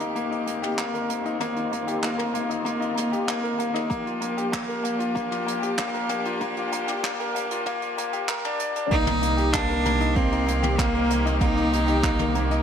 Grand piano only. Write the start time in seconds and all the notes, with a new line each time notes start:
Already playing: A#3 G4 A#4
0.00 D#4
0.15 A#3
0.31 D#4
0.47 A#3
0.62 G4
0.78 A#3
0.94 A#4
1.09 A#3
1.25 D#4
1.40 A#3
1.56 D#4
1.72 A#3
1.87 G4
2.03 A#3
2.18 A#4
2.34 A#3
2.49 D#4
2.65 A#3
2.80 D#4
2.95 A#3
3.12 G4
3.28 A#3
3.43 A#4
3.59 A#3
3.74 D#4
3.90 A#3
4.06 F4
4.21 A#3
4.37 G4
4.52 A#3
4.68 A#4
4.84 A#3
4.99 F4
5.15 A#3
5.31 F4
5.46 A#3
5.62 G4
5.78 A#3
5.94 A#4
6.10 A#3
6.26 F4
6.41 A#3
6.57 F4
6.72 A#3
6.87 G4
7.03 A#3
7.20 A#4
7.35 A#3
7.51 F4
7.66 A#3
7.82 F4
7.98 A#3
8.13 G4
8.29 A#4
8.45 D4
8.60 D5
8.76 D4
8.91 A#3
9.07 D#4
9.22 A#3
9.37 G4
9.53 A#3
9.69 A#4
9.86 A#3
10.00 D#4
10.16 A#3
10.32 D#4
10.47 A#3
10.63 G4
10.78 A#3
10.94 A#4
11.10 A#3
11.25 D#4
11.41 A#3
11.57 D#4
11.73 A#3
11.88 G4
12.04 A#3
12.20 A#4
12.35 A#3
12.51 D#4